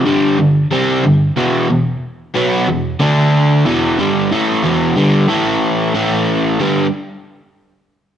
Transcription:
0.05 G2 D3 G3
0.38 G2 D3
0.71 C3 G3 C4
1.03 G2 D3
1.37 E2 B2 E3
1.70 E2 B2
2.34 B2 F#3 B3
2.68 E2 B2
3.00 D3 A3 D4
3.65 E2 B2 E3
3.98 G2 D3 G3
4.31 A2 E3 A3
4.63 E2 B2 E3
4.96 G2 D3 G3
5.28 A2 E3 A3
5.94 A2 E3 A3
6.60 G2 D3 G3

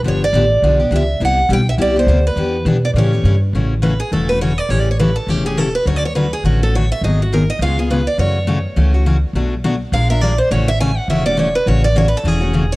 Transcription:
0.03 G1 D3 F3 B3 D4 G4
0.08 C#5
0.24 D5
0.33 A1 D3 F3 B3 D4 G4
0.62 B1 D3 F3 B3 D4 G4
0.79 B3 D4 G4
0.91 C#2 D3 F3 B3 D4 G4
0.96 E5
1.20 C2 C3 G3 B3 E4 G4
1.25 F#5
1.49 B1 C3 G3 B3 E4 G4
1.53 G5
1.69 E5
1.78 C2 C3 G3 B3 E4 G4 D5
1.96 B3 E4 G4 C5
2.07 D2 C3 G3 B3 E4 G4
2.27 B4
2.36 E2 E3 B3 D4 G4
2.65 B2 E3 B3 D4 G4
2.85 D5
2.94 A2 C#3 E3 A3 C#4 G4
2.98 C#5
3.13 A3 C#4 G4
3.24 G2 C#3 E3 A3 C#4 G4
3.53 A1 C#3 E3 A3 C#4 F#4
3.82 C#3 E3 A3 C#4 F#4 B4
4.00 G#4
4.12 E1 C#3 E3 A3 C#4 F#4 A4
4.29 A3 C#4 F#4 B4
4.41 C#3 E3 A3 C#4 F#4 C#5
4.58 D5
4.69 A1 C#3 E3 A3 C#4 G4 C#5
4.80 D5
4.91 C#5
4.99 C#3 E3 A3 C#4 G4 B4
5.16 A4
5.27 E1 C#3 E3 A3 C#4 G4
5.45 A3 C#4 G4 G#4
5.57 C#3 E3 A3 C#4 G4 A4
5.75 B4
5.86 D2 D3 F#3 A3 C#4 F#4 C#5
5.96 D5
6.05 C#5
6.15 D3 F#3 A3 C#4 F#4 B4
6.33 G#4
6.43 A1 D3 F#3 A3 C#4 F#4
6.62 A3 C#4 F#4 A4
6.75 D3 F#3 A3 C#4 F#4 C#5
6.92 E5
7.01 G#1 D#3 F#3 B3 D#4 G#4 D#5
7.22 F#4
7.33 D#3 F#3 B3 D#4 G#4 A#4
7.50 D#5
7.59 C#2 C#3 G#3 B3 F4 G#4 F5
7.78 B3 F4 G#4
7.90 C#3 G#3 B3 F4 G#4 B4
8.07 D5
8.18 F#2 C#3 E3 A3 C#4 F#4 C#5
8.47 C#3 E3 A3 C#4 F#4
8.76 C#2 C#3 E3 A3 C#4 F#4
8.94 A3 C#4 F#4
9.06 C#3 E3 A3 C#4 F#4
9.33 B1 B2 F#3 A3 D4 F#4
9.64 B2 F#3 A3 D4 F#4
9.92 A#1 F3 G#3 D4 F4 A#4 F5
10.10 D4 F4 A#4 E5
10.21 F3 G#3 D4 F4 A#4 D5
10.38 C5
10.51 A1 C#3 E3 A3 C#4 F#4 C#5
10.68 E5
10.80 C#3 E3 A3 C#4 F#4 G#5
10.97 F#5
11.08 E1 C#3 E3 A3 C#4 F#4 E5
11.25 A3 C#4 F#4 D5
11.37 C#3 E3 A3 C#4 F#4 C#5
11.55 B4
11.66 A1 C#3 E3 A3 C#4 F#4 C#5
11.84 D5
11.96 C#3 E3 A3 C#4 F#4 C#5
12.08 B4
12.17 A4
12.24 E1 C#3 E3 A3 C#4 F#4 G#4
12.40 A3 C#4 F#4
12.53 C#3 E3 A3 C#4 F#4
12.72 C#5

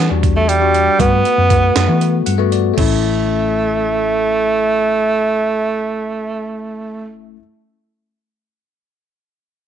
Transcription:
0.09 E2 G3 D4 F#4
0.23 kick, closed hi-hat
0.36 A3
0.48 G3, closed hi-hat
0.60 G3 D4 F#4
0.74 closed hi-hat
0.98 G2 A3 B3 F#4, kick, closed hi-hat
1.25 closed hi-hat
1.38 F#2
1.49 A3 B3 F#4, kick, closed hi-hat
1.76 F#2, snare, closed hi-hat
1.87 E3 A3 B3 F#4
2.01 closed hi-hat
2.26 G2 F#5, closed hi-hat
2.38 A3 B3 F#4
2.52 D5, closed hi-hat
2.74 A3 C#4
2.78 A1 A3 E4, kick, crash

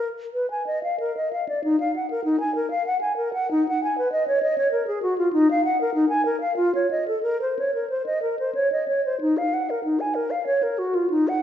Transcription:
0.34 B4
0.51 G#5
0.67 D#5
0.83 F5
1.00 A#4
1.17 D#5
1.33 F5
1.49 D5
1.64 D#4
1.80 F5
1.96 F#5
2.10 A#4
2.24 D#4
2.40 G#5
2.55 A#4
2.71 F5
2.86 F#5
3.01 G#5
3.17 A#4
3.33 F#5
3.51 D#4
3.69 F#5
3.84 G#5
3.98 B4
4.12 D#5
4.28 C#5
4.43 D#5
4.58 C#5
4.72 A#4
4.87 G#4
5.03 F#4
5.18 F4
5.33 D#4
5.51 F5
5.65 F#5
5.81 A#4
5.94 D#4
6.09 G#5
6.26 A#4
6.41 F5
6.57 F4
6.75 C#5
6.91 D#5
7.08 A4
7.23 A#4
7.42 C5
7.59 C#5
7.74 A#4
7.90 C5
8.06 D#5
8.23 A#4
8.39 C5
8.55 C#5
8.72 D#5
8.88 C#5
9.05 C5
9.21 D#4
9.38 F5
9.54 F#5
9.70 A#4
9.84 D#4
10.00 G#5
10.15 A#4
10.31 F5
10.47 C#5
10.63 A#4
10.78 F#4
10.95 F4
11.10 D#4
11.28 F#5

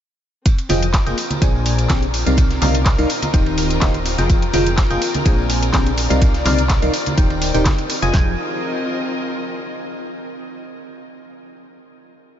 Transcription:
0.46 C4, kick, closed hi-hat, ride, tambourine
0.58 closed hi-hat, ride, tambourine
0.69 F1 F3 F4 G#4 D#5 G5, open hi-hat, ride, tambourine, high conga
0.78 F4 A#4 D#5
0.82 closed hi-hat, tambourine
0.94 kick, snare, clap, closed hi-hat, ride, tambourine
1.06 F1 A#3 F4 G#4 D#5 G5, closed hi-hat, tambourine
1.18 open hi-hat, ride, tambourine
1.30 closed hi-hat, tambourine, high conga
1.42 A#1 A#2 D4 G#4 C5 G#5, kick, closed hi-hat, ride, tambourine
1.55 tambourine
1.61 D5
1.66 open hi-hat, ride, tambourine
1.78 closed hi-hat, tambourine
1.89 A#1 C3 D4 G#4 C5 G5, kick, snare, clap, closed hi-hat, ride, tambourine, high conga
2.02 closed hi-hat, tambourine
2.14 open hi-hat, ride, tambourine
2.26 C2 C3 D#4 A#4 D5 F5, closed hi-hat, tambourine
2.37 kick, closed hi-hat, ride, tambourine
2.51 snare, closed hi-hat, tambourine
2.58 D#5
2.62 C2 C3 D#4 A#4 D5 F5, clap, open hi-hat, ride, tambourine, high conga
2.75 closed hi-hat, tambourine
2.85 kick, snare, clap, closed hi-hat, ride, tambourine
2.98 C2 D#3 D#4 A#4 D5 F5, closed hi-hat, tambourine
3.10 open hi-hat, ride, tambourine
3.22 closed hi-hat, ride, tambourine, high conga
3.34 D#1 D#3 D#4 G4 C5 G5, kick, closed hi-hat, ride, tambourine
3.46 ride, tambourine
3.58 open hi-hat, ride, tambourine
3.70 closed hi-hat, tambourine
3.81 D#1 D#3 D#4 G4 C5 F5, kick, snare, clap, closed hi-hat, ride, tambourine, high conga
3.94 closed hi-hat, ride, tambourine
4.06 open hi-hat, ride, tambourine
4.18 F1 F3 F4 G#4 D#5 G5, snare, closed hi-hat, tambourine
4.30 kick, closed hi-hat, ride, tambourine
4.42 closed hi-hat, ride, tambourine
4.53 F1 F3 F4 G#4 D#5 G5, open hi-hat, ride, tambourine, high conga
4.66 closed hi-hat, tambourine
4.77 kick, snare, clap, closed hi-hat, ride, tambourine
4.90 F1 A#3 F4 G#4 D#5 G5, closed hi-hat, tambourine
5.02 open hi-hat, ride, tambourine
5.14 closed hi-hat, tambourine, high conga
5.26 A#1 A#2 D4 G#4 C5 D5 G#5, kick, closed hi-hat, ride, tambourine
5.38 tambourine
5.49 open hi-hat, ride, tambourine
5.63 closed hi-hat, tambourine
5.73 A#1 C3 D4 G#4 C5 G5, kick, snare, clap, closed hi-hat, ride, tambourine, high conga
5.86 closed hi-hat, tambourine
5.97 open hi-hat, ride, tambourine
6.10 C2 C3 D#4 A#4 D5 F5, closed hi-hat, tambourine
6.22 kick, closed hi-hat, ride, tambourine
6.34 snare, closed hi-hat, tambourine
6.45 C2 C3 D#4 A#4 D5 F5, clap, open hi-hat, ride, tambourine, high conga
6.58 closed hi-hat, tambourine
6.69 kick, snare, clap, closed hi-hat, ride, tambourine
6.82 C2 D#3 D#4 A#4 D5 F5, closed hi-hat, tambourine
6.93 open hi-hat, ride, tambourine
7.06 closed hi-hat, ride, tambourine, high conga
7.17 D#1 D#3 D#4 G4 C5 G5, kick, closed hi-hat, ride, tambourine
7.30 ride, tambourine
7.42 open hi-hat, ride, tambourine
7.54 D#1 D#3 D#4 G4 C5 G5, closed hi-hat, tambourine
7.65 kick, snare, clap, closed hi-hat, ride, tambourine, high conga
7.78 closed hi-hat, ride, tambourine
7.90 open hi-hat, ride, tambourine
8.02 F1 F3 F4 G#4 D#5 G#5, snare, closed hi-hat, tambourine
8.13 F1 C4 F4 G#4 D#5 G5, kick, snare, clap
8.21 F4
8.29 A#4
8.36 D#5

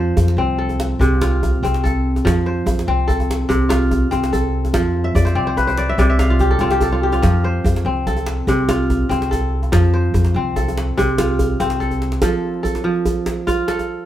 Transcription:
Already playing: F2 F3 C4 A4 C5
0.17 F2, djembe tone, djembe bass
0.28 djembe slap
0.37 C2 C4
0.58 A4, djembe slap
0.69 djembe tone
0.80 djembe slap
0.99 C2 C3, djembe bass
1.22 F4, djembe slap, djembe tone
1.43 djembe slap, djembe bass
1.54 djembe slap
1.63 C2 C4, djembe tone
1.74 djembe slap
1.84 A4, djembe slap, djembe bass
2.16 djembe tone
2.25 F2 F3, djembe slap, djembe bass
2.46 C5
2.66 F2, djembe tone, djembe bass
2.79 djembe slap
2.87 C2 C4
3.00 djembe slap
3.08 A4, djembe slap, djembe bass
3.20 djembe tone
3.31 djembe slap
3.41 djembe slap
3.49 C2 C3, djembe bass
3.69 F4, djembe slap, djembe tone
3.91 djembe slap, djembe bass
4.11 C2 C4, djembe slap, djembe tone
4.24 djembe slap
4.33 A4, djembe bass
4.65 djembe tone
4.73 F2 F3, djembe slap, djembe bass
5.04 E5
5.15 F2 D5, djembe tone, djembe bass
5.25 C5, djembe slap
5.35 C2 C4 D5
5.47 C5
5.57 B4, djembe slap, djembe bass
5.67 C5, djembe tone
5.78 D5, djembe slap
5.88 E5, djembe slap
5.98 C2 C3 D5, djembe bass
6.10 E5
6.19 F5, djembe slap, djembe tone
6.30 F4
6.39 G4, djembe slap, djembe bass
6.51 A4
6.59 C2 C4 F4, djembe slap, djembe tone
6.71 G4, djembe slap
6.81 A4, djembe bass
6.92 F4
7.03 G4
7.12 F4, djembe tone
7.22 F2 F3, djembe slap, djembe bass
7.44 C5
7.64 F2, djembe tone, djembe bass
7.76 djembe slap
7.85 C2 C4
7.97 djembe slap
8.07 A4, djembe slap, djembe bass
8.17 djembe tone
8.27 djembe slap
8.37 djembe slap
8.47 C2 C3, djembe bass
8.69 F4, djembe slap, djembe tone
8.90 djembe slap, djembe bass
9.09 C2 C4, djembe slap, djembe tone
9.22 djembe slap
9.31 A4, djembe bass
9.63 djembe tone
9.72 F2 F3, djembe slap, djembe bass
9.84 djembe slap
9.94 C5, djembe slap
10.05 djembe slap
10.14 F2, djembe slap, djembe tone, djembe bass
10.25 djembe slap
10.34 C2 C4
10.56 A4, djembe slap, djembe bass
10.68 djembe tone
10.77 djembe slap
10.97 C2 C3, djembe bass
11.08 djembe slap
11.18 F4, djembe slap, djembe tone
11.39 djembe bass
11.50 djembe slap
11.60 C2 C4, djembe slap, djembe tone
11.70 djembe slap
11.80 A4, djembe bass
11.91 djembe bass
12.02 djembe slap
12.12 djembe slap
12.22 F3 A4, djembe slap, djembe tone, djembe bass
12.54 djembe slap
12.63 A4, djembe bass
12.75 djembe slap, djembe tone
12.84 F3
12.96 djembe slap
13.06 djembe bass
13.26 djembe slap, djembe tone
13.47 F4, djembe bass
13.68 A4, djembe slap
13.79 djembe tone

